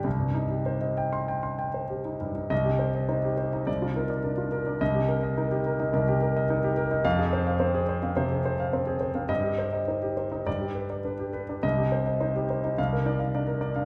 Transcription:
0.04 2.47 C2 medium
0.19 0.45 G2 soft
0.35 0.60 D#4 soft
0.50 0.76 G4 soft
0.66 0.92 C5 soft
0.81 1.07 D#5 soft
0.98 1.23 G5 soft
1.13 1.38 C6 medium
1.28 1.53 G5 soft
1.43 1.68 C6 soft
1.59 1.84 G5 soft
1.74 1.99 C5 soft
1.90 2.15 G4 soft
2.05 2.30 D#4 soft
2.21 2.45 G2 soft
2.35 2.51 D#4 soft
2.50 3.63 C2 medium
2.50 2.74 D#5 medium
2.65 2.89 G4 soft
2.79 3.03 C5 soft
2.95 3.18 D#5 soft
3.09 3.32 D#4 soft
3.09 3.32 C5 soft
3.24 3.47 G4 soft
3.37 3.61 C5 soft
3.53 3.67 D#4 soft
3.53 3.67 D#5 soft
3.67 4.77 C2 soft
3.67 3.90 D5 medium
3.82 4.04 F4 soft
3.96 4.10 D#4 soft
3.96 4.18 A#4 soft
4.10 4.32 D5 soft
4.24 4.46 D4 soft
4.24 4.46 A#4 soft
4.38 4.60 F4 soft
4.52 4.75 A#4 medium
4.67 4.81 D4 soft
4.67 4.81 D5 soft
4.81 5.91 C2 medium
4.81 5.03 D#5 medium
4.94 5.17 G4 soft
5.08 5.31 A#4 soft
5.23 5.46 D#5 medium
5.37 5.60 D#4 soft
5.37 5.60 A#4 medium
5.51 5.74 G4 medium
5.66 5.89 A#4 medium
5.80 6.02 D#4 soft
5.80 6.02 D#5 soft
5.93 7.01 C2 medium
5.93 6.16 A#4 medium
6.08 6.31 G4 medium
6.22 6.44 A#4 medium
6.36 6.58 D#5 medium
6.50 6.72 D#4 medium
6.50 6.72 A#4 medium
6.64 6.86 G4 medium
6.77 6.99 A#4 medium
6.91 7.05 D#4 medium
6.91 7.05 D#5 medium
7.05 8.13 F2 medium
7.05 7.27 F5 medium
7.19 7.41 G#4 medium
7.33 7.55 C5 medium
7.47 7.69 F5 medium
7.60 7.82 C4 medium
7.60 7.82 C5 medium
7.75 7.97 G#4 medium
7.89 8.11 C5 medium
8.03 8.25 C4 soft
8.03 8.25 F5 medium
8.17 8.39 C3 medium
8.17 8.39 C5 medium
8.32 8.53 G#4 medium
8.45 8.67 C5 medium
8.60 8.81 F5 medium
8.73 8.95 C4 medium
8.73 8.95 C5 medium
8.87 9.09 G#4 medium
9.00 9.23 C5 medium
9.15 9.29 C4 soft
9.15 9.29 F5 medium
9.29 10.42 G2 medium
9.29 9.52 D#5 medium
9.43 9.67 G4 soft
9.58 9.82 C5 soft
9.73 9.96 D#5 soft
9.88 10.11 D#4 soft
9.88 10.11 C5 soft
10.02 10.26 G4 soft
10.17 10.40 C5 soft
10.32 10.46 D#4 soft
10.32 10.46 D#5 soft
10.47 11.60 G2 medium
10.47 10.70 D5 medium
10.61 10.84 G4 soft
10.75 10.99 B4 soft
10.90 11.13 D5 soft
11.05 11.28 D4 soft
11.05 11.28 B4 soft
11.19 11.43 G4 soft
11.33 11.57 B4 medium
11.49 11.64 D4 soft
11.49 11.64 D5 soft
11.63 12.74 C2 medium
11.63 11.86 D#5 medium
11.78 12.01 G4 soft
11.92 12.15 C5 soft
12.06 12.29 D#5 medium
12.20 12.44 D#4 soft
12.20 12.44 C5 medium
12.35 12.58 G4 soft
12.50 12.73 C5 soft
12.64 12.78 D#4 soft
12.64 12.78 D#5 soft
12.78 13.85 C2 medium
12.78 13.01 F5 medium
12.93 13.15 A#4 soft
13.06 13.20 D#4 soft
13.06 13.28 D5 medium
13.19 13.42 F5 medium
13.35 13.57 D4 soft
13.35 13.57 D5 soft
13.47 13.70 A#4 soft
13.61 13.84 D5 medium
13.76 13.85 D4 soft
13.76 13.85 F5 medium

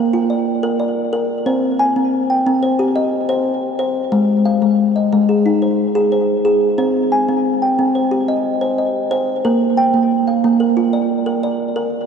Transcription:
0.00 0.13 A#3 medium
0.00 0.47 A#4 medium
0.00 0.14 F5 medium
0.13 0.47 F4 medium
0.30 0.78 D5 medium
0.63 0.97 A#4 medium
0.80 1.30 D5 medium
1.13 1.47 A#4 medium
1.46 1.80 C4 medium
1.46 1.97 C5 medium
1.79 2.30 G#5 medium
1.96 2.30 C4 medium
2.30 2.80 G5 soft
2.47 2.80 C4 medium
2.63 3.13 C5 medium
2.79 3.13 G4 medium
2.96 3.46 D#5 medium
3.29 3.63 C5 medium
3.79 4.13 C5 medium
4.12 4.46 G#3 medium
4.46 4.96 F5 medium
4.62 4.96 G#3 medium
4.96 5.46 D#5 soft
5.13 5.46 G#3 medium
5.29 5.79 G#4 medium
5.46 5.79 D#4 medium
5.62 6.11 C5 medium
5.95 6.29 G#4 medium
6.12 6.62 C5 medium
6.45 6.79 G#4 medium
6.78 7.12 C4 medium
6.78 7.29 C5 medium
7.12 7.62 G#5 medium
7.29 7.62 C4 medium
7.62 8.12 G5 medium
7.79 8.12 C4 medium
7.95 8.45 C5 medium
8.11 8.45 G4 medium
8.28 8.77 D#5 medium
8.61 8.95 C5 medium
8.78 9.28 D#5 medium
9.11 9.45 C5 medium
9.45 9.78 A#3 medium
9.45 9.95 A#4 medium
9.77 10.28 G5 medium
9.94 10.28 A#3 medium
10.28 10.78 F5 soft
10.44 10.78 A#3 medium
10.60 11.10 A#4 medium
10.77 11.10 F4 medium
10.93 11.42 D5 medium
11.26 11.60 A#4 medium
11.43 11.93 D5 medium
11.76 12.06 A#4 medium

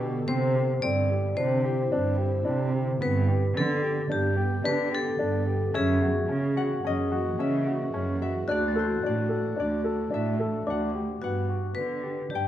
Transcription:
0.00 0.18 B2 medium
0.00 5.71 D3 medium
0.00 0.26 B3 medium
0.00 0.22 G4 medium
0.00 0.26 A4 medium
0.00 0.37 D6 soft
0.28 0.73 C3 medium
0.28 0.50 C4 medium
0.28 2.99 C4 medium
0.28 2.99 E4 medium
0.28 0.85 C5 medium
0.56 0.78 G4 medium
0.82 1.28 G2 medium
0.82 1.05 C4 medium
0.82 1.39 D5 medium
1.10 1.32 G4 medium
1.37 1.82 C3 medium
1.37 1.60 D4 medium
1.37 2.98 C5 medium
1.64 1.87 G4 medium
1.92 2.37 G2 medium
1.92 2.14 D4 medium
2.18 2.41 G4 medium
2.45 2.91 C3 medium
2.45 2.68 D4 medium
2.73 2.96 G4 medium
3.00 3.47 G2 loud
3.00 5.72 B3 medium
3.00 3.23 B3 medium
3.00 5.72 G4 medium
3.00 3.58 B4 medium
3.28 3.50 G4 medium
3.54 4.01 D3 medium
3.54 3.77 B3 medium
3.54 4.08 A4 medium
3.82 4.05 G4 medium
4.10 4.55 G2 medium
4.10 4.32 D4 medium
4.10 4.68 G4 medium
4.36 4.59 G4 medium
4.64 5.10 D3 medium
4.64 4.87 D4 medium
4.64 4.94 B4 medium
4.92 5.14 G4 medium
4.92 5.72 A4 medium
5.19 5.65 G2 medium
5.19 5.42 D4 medium
5.47 5.69 G4 medium
5.74 6.19 F#2 loud
5.74 11.18 E3 medium
5.74 8.46 A#3 medium
5.74 5.96 C#4 medium
5.74 11.18 F#4 medium
5.74 8.57 G#4 medium
5.74 6.93 E5 medium
6.02 6.24 F#4 medium
6.29 6.74 C#3 medium
6.29 6.51 C#4 medium
6.57 6.79 F#4 medium
6.57 8.18 F#5 medium
6.84 7.28 F#2 medium
6.84 7.06 C#4 medium
6.84 7.46 D#5 medium
7.12 7.34 F#4 medium
7.39 7.83 C#3 medium
7.39 7.61 C#4 medium
7.39 8.22 E5 medium
7.67 7.89 F#4 medium
7.94 8.38 F#2 medium
7.94 8.16 C#4 medium
8.22 8.43 F#4 medium
8.22 8.29 E5 medium
8.47 8.93 D2 medium
8.47 11.19 D4 medium
8.47 8.70 D4 medium
8.47 10.90 F#4 medium
8.47 9.06 D5 medium
8.47 9.66 F#6 medium
8.68 9.83 A6 soft
8.76 8.98 A4 medium
8.76 10.77 C5 medium
9.03 9.48 A2 medium
9.03 9.25 D4 medium
9.03 9.59 D5 medium
9.29 9.52 A4 medium
9.56 10.03 D2 medium
9.56 9.79 D4 medium
9.56 11.44 D5 medium
9.84 10.07 A4 medium
10.11 10.57 A2 medium
10.11 10.33 D4 medium
10.11 11.86 E5 medium
10.39 10.62 A4 medium
10.67 11.12 D2 medium
10.67 10.89 D4 medium
10.67 11.23 F#5 medium
10.67 11.45 D6 soft
10.95 11.16 G4 medium
11.22 11.66 G2 medium
11.22 11.44 B3 medium
11.22 11.78 F#4 medium
11.22 12.41 F#5 medium
11.49 11.71 F#4 medium
11.75 12.21 D3 medium
11.75 11.98 B3 medium
11.75 12.32 B4 medium
12.03 12.26 G4 medium
12.30 12.48 G2 medium
12.30 12.48 D4 medium
12.30 12.48 G4 medium
12.35 12.48 G5 medium

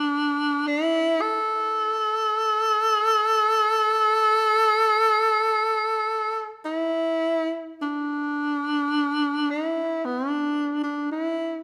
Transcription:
0.00 0.69 D4 medium
0.68 1.23 E4 medium
1.21 6.48 A4 loud
6.65 7.77 E4 medium
7.82 9.52 D4 medium
9.51 10.06 E4 medium
10.05 10.31 B3 medium
10.31 10.83 D4 medium
10.83 11.10 D4 medium
11.12 11.62 E4 medium

